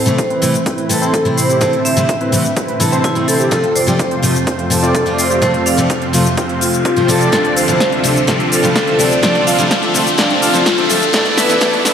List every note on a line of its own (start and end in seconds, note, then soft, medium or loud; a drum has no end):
0.00 3.48 A2 medium
0.00 1.59 E3 medium
0.00 0.12 C4 medium
0.00 3.48 C4 medium
0.00 0.12 E4 medium
0.00 0.12 C5 medium
0.00 0.62 C5 loud
0.00 riser medium
0.06 0.19 C3 medium
0.06 0.19 E3 medium
0.06 0.19 A3 medium
0.06 0.19 G4 loud
0.06 closed hi-hat soft
0.06 shaker soft
0.18 kick loud
0.18 closed hi-hat medium
0.18 shaker soft
0.30 0.47 C4 medium
0.30 0.47 E4 medium
0.30 0.47 B4 loud
0.30 closed hi-hat soft
0.42 0.54 C3 medium
0.42 0.54 E3 medium
0.42 0.55 A3 medium
0.42 0.55 E4 medium
0.42 open hi-hat loud
0.42 shaker medium
0.54 closed hi-hat soft
0.54 shaker soft
0.66 0.93 C4 medium
0.66 0.93 E4 medium
0.66 0.93 B4 medium
0.66 kick loud
0.66 closed hi-hat medium
0.66 shaker soft
0.78 closed hi-hat soft
0.89 1.22 C3 medium
0.89 1.23 E3 medium
0.89 1.23 A3 medium
0.89 1.12 A4 medium
0.89 1.23 A4 loud
0.89 open hi-hat loud
0.89 shaker medium
1.02 1.47 C4 loud
1.02 1.47 E4 medium
1.02 1.47 C5 loud
1.02 closed hi-hat soft
1.02 shaker soft
1.14 1.36 A4 medium
1.14 kick loud
1.14 closed hi-hat medium
1.14 shaker soft
1.25 1.58 C3 medium
1.25 1.58 E3 medium
1.25 1.59 A3 medium
1.25 1.59 E4 medium
1.25 closed hi-hat soft
1.37 1.60 C5 medium
1.37 open hi-hat loud
1.37 shaker medium
1.49 1.58 C4 medium
1.49 1.58 E4 medium
1.49 1.58 G4 medium
1.49 closed hi-hat soft
1.49 shaker soft
1.61 1.73 C3 medium
1.61 3.50 D3 medium
1.61 1.74 E3 medium
1.61 1.74 A3 medium
1.61 1.82 C4 loud
1.61 1.82 E4 medium
1.61 1.74 E4 medium
1.61 1.82 A4 loud
1.61 1.86 C5 loud
1.61 kick loud
1.61 closed hi-hat medium
1.61 shaker soft
1.73 closed hi-hat soft
1.85 2.02 C4 medium
1.85 2.02 E4 medium
1.85 2.02 C5 medium
1.85 2.53 E5 loud
1.85 open hi-hat loud
1.85 shaker medium
1.97 2.09 C3 medium
1.97 2.09 E3 medium
1.97 2.09 A3 medium
1.97 2.10 G4 loud
1.97 closed hi-hat soft
1.97 shaker soft
2.09 kick loud
2.09 closed hi-hat medium
2.09 shaker soft
2.21 2.38 C4 medium
2.21 2.38 E4 medium
2.21 2.38 B4 loud
2.21 closed hi-hat soft
2.32 2.45 C3 medium
2.32 2.45 E3 medium
2.32 2.45 A3 medium
2.32 2.45 E4 loud
2.32 open hi-hat loud
2.32 shaker medium
2.45 closed hi-hat soft
2.45 shaker soft
2.56 2.84 C4 medium
2.56 2.84 E4 medium
2.56 2.84 B4 medium
2.56 kick loud
2.56 closed hi-hat medium
2.56 shaker soft
2.68 closed hi-hat soft
2.80 3.13 C3 medium
2.80 3.13 E3 medium
2.80 3.13 A3 medium
2.80 3.03 E4 medium
2.80 3.14 A4 loud
2.80 open hi-hat loud
2.80 shaker medium
2.92 3.37 C4 loud
2.92 3.37 E4 medium
2.92 3.37 C5 loud
2.92 closed hi-hat soft
2.92 shaker soft
3.04 3.26 E4 medium
3.04 kick loud
3.04 closed hi-hat medium
3.04 shaker soft
3.15 3.49 C3 medium
3.15 3.49 E3 medium
3.15 3.49 A3 medium
3.15 3.49 E4 medium
3.15 closed hi-hat soft
3.28 3.50 A4 loud
3.28 open hi-hat loud
3.28 shaker medium
3.40 3.49 C4 medium
3.40 3.49 E4 medium
3.40 3.49 G4 medium
3.40 closed hi-hat soft
3.40 shaker soft
3.51 7.29 F2 medium
3.51 3.64 C3 loud
3.51 11.10 C3 medium
3.51 3.64 F3 medium
3.51 7.29 A3 medium
3.51 3.64 A3 medium
3.51 3.73 C4 loud
3.51 3.73 F4 medium
3.51 3.64 F4 medium
3.51 3.73 A4 loud
3.51 3.76 A4 loud
3.51 kick loud
3.51 closed hi-hat medium
3.51 shaker soft
3.64 closed hi-hat soft
3.75 3.93 C4 medium
3.75 3.93 F4 medium
3.75 4.43 C5 loud
3.75 3.93 D5 medium
3.75 open hi-hat loud
3.75 shaker medium
3.87 3.99 C3 medium
3.87 4.00 F3 medium
3.87 4.00 A3 medium
3.87 4.00 G4 loud
3.87 shaker soft
3.99 kick loud
3.99 closed hi-hat medium
3.99 shaker soft
4.11 4.28 C4 medium
4.11 4.28 F4 medium
4.11 4.28 C5 loud
4.11 closed hi-hat soft
4.22 4.35 C3 medium
4.22 4.35 F3 medium
4.22 4.36 A3 medium
4.22 4.36 F4 medium
4.22 open hi-hat loud
4.22 shaker medium
4.35 closed hi-hat soft
4.35 shaker soft
4.47 4.74 C4 medium
4.47 4.74 F4 medium
4.47 4.74 C5 medium
4.47 kick loud
4.47 closed hi-hat medium
4.47 shaker soft
4.59 closed hi-hat soft
4.70 5.03 C3 medium
4.70 5.04 F3 medium
4.70 5.04 A3 medium
4.70 4.94 A4 medium
4.70 5.04 A4 medium
4.70 open hi-hat loud
4.70 shaker medium
4.83 5.28 C4 loud
4.83 5.28 F4 medium
4.83 5.28 D5 loud
4.83 shaker soft
4.95 5.19 A4 medium
4.95 kick loud
4.95 closed hi-hat medium
4.95 shaker soft
5.06 5.39 C3 medium
5.06 5.39 F3 medium
5.06 5.39 A3 medium
5.06 5.40 F4 medium
5.06 closed hi-hat soft
5.18 5.41 C5 medium
5.18 open hi-hat loud
5.18 shaker medium
5.30 5.39 C4 medium
5.30 5.39 F4 medium
5.30 5.39 G4 medium
5.30 closed hi-hat soft
5.30 shaker soft
5.42 5.54 C3 medium
5.42 5.54 F3 medium
5.42 5.55 A3 medium
5.42 5.63 C4 loud
5.42 5.63 F4 medium
5.42 5.55 F4 medium
5.42 5.63 A4 loud
5.42 5.67 C5 loud
5.42 kick loud
5.42 closed hi-hat medium
5.42 shaker soft
5.54 closed hi-hat soft
5.66 5.83 C4 medium
5.66 5.83 F4 medium
5.66 5.83 D5 medium
5.66 6.34 F5 loud
5.66 open hi-hat loud
5.66 shaker medium
5.77 5.90 C3 medium
5.77 5.90 F3 medium
5.77 5.90 A3 medium
5.77 5.91 G4 loud
5.77 closed hi-hat soft
5.77 shaker soft
5.90 kick loud
5.90 closed hi-hat medium
5.90 shaker soft
6.02 6.19 C4 medium
6.02 6.19 F4 medium
6.02 6.19 C5 medium
6.02 closed hi-hat soft
6.13 6.26 C3 medium
6.13 6.26 F3 medium
6.13 6.26 A3 medium
6.13 6.26 F4 medium
6.13 open hi-hat loud
6.13 shaker medium
6.25 closed hi-hat soft
6.25 shaker soft
6.37 6.65 C4 medium
6.37 6.65 F4 medium
6.37 6.65 C5 medium
6.37 kick loud
6.37 closed hi-hat medium
6.37 shaker soft
6.49 closed hi-hat soft
6.61 6.84 F4 medium
6.61 open hi-hat loud
6.61 shaker medium
6.73 closed hi-hat soft
6.73 shaker soft
6.85 6.94 C4 medium
6.85 6.94 F4 medium
6.85 7.07 F4 medium
6.85 6.94 G4 loud
6.85 kick loud
6.85 closed hi-hat medium
6.85 shaker soft
6.96 7.06 C3 medium
6.96 7.06 F3 medium
6.96 7.06 A3 medium
6.96 7.07 C4 medium
6.96 7.07 F4 medium
6.96 7.06 F4 medium
6.96 7.07 C5 loud
6.96 closed hi-hat soft
7.08 7.28 C3 loud
7.08 7.28 F3 medium
7.08 7.29 A3 medium
7.08 7.30 C4 medium
7.08 7.30 F4 medium
7.08 7.31 A4 loud
7.08 7.29 A4 loud
7.08 7.30 D5 medium
7.08 open hi-hat loud
7.08 shaker medium
7.21 closed hi-hat soft
7.21 shaker soft
7.32 11.10 D2 medium
7.32 7.45 C3 medium
7.32 7.45 F3 medium
7.32 11.10 F3 medium
7.32 7.45 A3 medium
7.32 7.54 C4 medium
7.32 7.54 D4 medium
7.32 7.45 D4 loud
7.32 7.54 F4 medium
7.32 7.54 A4 medium
7.32 7.57 A4 loud
7.32 7.54 D5 loud
7.32 kick loud
7.32 snare soft
7.32 closed hi-hat medium
7.32 shaker soft
7.45 closed hi-hat soft
7.56 7.74 C4 medium
7.56 7.74 D4 medium
7.56 7.74 F4 medium
7.56 7.74 A4 medium
7.56 8.24 C5 loud
7.56 7.74 F5 medium
7.56 open hi-hat loud
7.56 shaker medium
7.68 7.80 C3 medium
7.68 7.81 F3 medium
7.68 7.81 A3 medium
7.68 7.81 E4 medium
7.68 closed hi-hat soft
7.68 shaker soft
7.80 kick loud
7.80 snare soft
7.80 closed hi-hat medium
7.80 shaker soft
7.92 8.09 C4 medium
7.92 8.09 D4 medium
7.92 8.09 F4 medium
7.92 8.09 A4 medium
7.92 8.09 E5 medium
7.92 closed hi-hat soft
8.04 8.16 C3 medium
8.04 8.16 F3 medium
8.04 8.17 A3 medium
8.04 8.17 D4 medium
8.04 open hi-hat loud
8.04 shaker medium
8.16 closed hi-hat soft
8.16 shaker soft
8.27 8.40 C3 medium
8.27 8.40 F3 medium
8.27 8.40 A3 medium
8.27 8.49 C4 medium
8.27 8.49 D4 medium
8.27 8.41 D4 loud
8.27 8.49 F4 medium
8.27 8.49 A4 medium
8.27 8.49 D5 loud
8.27 kick loud
8.27 snare medium
8.27 closed hi-hat medium
8.27 shaker soft
8.40 closed hi-hat soft
8.52 8.69 C4 medium
8.52 8.69 D4 medium
8.52 8.69 F4 medium
8.52 8.69 A4 medium
8.52 8.74 A4 medium
8.52 8.69 F5 medium
8.52 open hi-hat loud
8.52 shaker medium
8.63 8.76 C3 medium
8.63 8.76 F3 medium
8.63 8.76 A3 medium
8.63 8.76 E4 medium
8.63 closed hi-hat soft
8.63 shaker soft
8.76 9.00 A4 medium
8.76 kick loud
8.76 snare medium
8.76 closed hi-hat medium
8.76 shaker soft
8.87 9.05 C4 medium
8.87 9.05 D4 medium
8.87 9.05 F4 medium
8.87 9.05 A4 medium
8.87 9.05 E5 medium
8.87 closed hi-hat soft
8.99 9.11 C3 medium
8.99 9.12 F3 medium
8.99 9.12 A3 medium
8.99 9.12 D4 medium
8.99 9.06 D5 medium
8.99 open hi-hat loud
8.99 shaker medium
9.06 9.11 C5 medium
9.11 9.22 D5 medium
9.11 closed hi-hat soft
9.11 shaker soft
9.23 9.35 C3 medium
9.23 9.35 F3 medium
9.23 9.36 A3 medium
9.23 9.44 C4 loud
9.23 9.44 D4 medium
9.23 9.36 D4 loud
9.23 9.44 F4 medium
9.23 9.44 A4 medium
9.23 9.44 D5 loud
9.23 9.34 D5 loud
9.23 kick loud
9.23 snare medium
9.23 closed hi-hat medium
9.23 shaker soft
9.35 closed hi-hat soft
9.47 9.64 C4 medium
9.47 9.64 D4 medium
9.47 9.64 F4 medium
9.47 9.64 A4 medium
9.47 9.64 F5 medium
9.47 10.15 F5 loud
9.47 open hi-hat loud
9.47 shaker medium
9.58 9.71 C3 medium
9.58 9.71 F3 medium
9.58 9.71 A3 medium
9.58 9.72 E4 loud
9.58 closed hi-hat soft
9.58 shaker soft
9.71 kick loud
9.71 snare medium
9.71 closed hi-hat medium
9.71 shaker soft
9.83 10.00 C4 medium
9.83 10.00 D4 medium
9.83 10.00 F4 medium
9.83 10.00 A4 medium
9.83 10.00 E5 medium
9.83 closed hi-hat soft
9.94 10.07 C3 medium
9.94 10.07 F3 medium
9.94 10.07 A3 medium
9.94 10.07 D4 medium
9.94 open hi-hat loud
9.94 shaker medium
10.07 closed hi-hat soft
10.07 shaker soft
10.18 10.30 C3 loud
10.18 10.31 F3 medium
10.18 10.31 A3 medium
10.18 10.39 C4 loud
10.18 10.39 D4 medium
10.18 10.31 D4 loud
10.18 10.39 F4 medium
10.18 10.39 A4 medium
10.18 10.39 D5 loud
10.18 kick loud
10.18 snare medium
10.18 closed hi-hat medium
10.18 shaker soft
10.30 closed hi-hat soft
10.42 10.59 C4 medium
10.42 10.59 D4 medium
10.42 10.59 F4 medium
10.42 10.65 F4 medium
10.42 10.59 A4 medium
10.42 10.59 F5 medium
10.42 open hi-hat loud
10.42 shaker medium
10.54 10.66 C3 medium
10.54 10.66 F3 medium
10.54 10.67 A3 medium
10.54 10.67 E4 medium
10.54 closed hi-hat soft
10.54 shaker soft
10.66 10.91 F4 medium
10.66 kick loud
10.66 snare medium
10.66 closed hi-hat medium
10.66 shaker soft
10.78 10.95 C4 medium
10.78 10.95 D4 medium
10.78 10.95 F4 medium
10.78 10.95 A4 medium
10.78 10.95 E5 medium
10.78 closed hi-hat soft
10.89 11.02 C3 medium
10.89 11.02 F3 medium
10.89 11.02 A3 medium
10.89 11.02 D4 loud
10.89 11.12 A4 loud
10.89 open hi-hat loud
10.89 shaker medium
11.02 closed hi-hat soft
11.02 shaker soft
11.13 11.94 E2 medium
11.13 11.26 B2 medium
11.13 11.94 B2 medium
11.13 11.26 E3 medium
11.13 11.94 A3 medium
11.13 11.26 A3 medium
11.13 11.35 B3 loud
11.13 11.35 D4 medium
11.13 11.26 D4 loud
11.13 11.35 E4 medium
11.13 11.35 A4 medium
11.13 11.36 A4 loud
11.13 11.35 D5 loud
11.13 kick loud
11.13 snare medium
11.13 closed hi-hat loud
11.13 shaker soft
11.26 closed hi-hat soft
11.37 11.55 B3 medium
11.37 11.55 D4 medium
11.37 11.55 E4 medium
11.37 11.55 A4 medium
11.37 11.94 B4 loud
11.37 11.55 E5 medium
11.37 snare medium
11.37 open hi-hat loud
11.37 shaker medium
11.49 11.59 B2 medium
11.49 11.59 E3 medium
11.49 11.60 A3 medium
11.49 11.60 E4 medium
11.49 closed hi-hat soft
11.49 shaker soft
11.61 11.73 B2 medium
11.61 11.73 E3 medium
11.61 11.74 A3 medium
11.61 11.82 B3 loud
11.61 11.82 D4 medium
11.61 11.74 D4 loud
11.61 11.82 E4 medium
11.61 11.82 A4 medium
11.61 11.82 D5 loud
11.61 kick loud
11.61 snare medium
11.61 closed hi-hat loud
11.61 shaker soft
11.73 closed hi-hat soft
11.85 11.94 B3 medium
11.85 11.94 D4 medium
11.85 11.94 E4 medium
11.85 11.94 A4 medium
11.85 11.94 E5 medium
11.85 snare medium
11.85 open hi-hat loud
11.85 shaker medium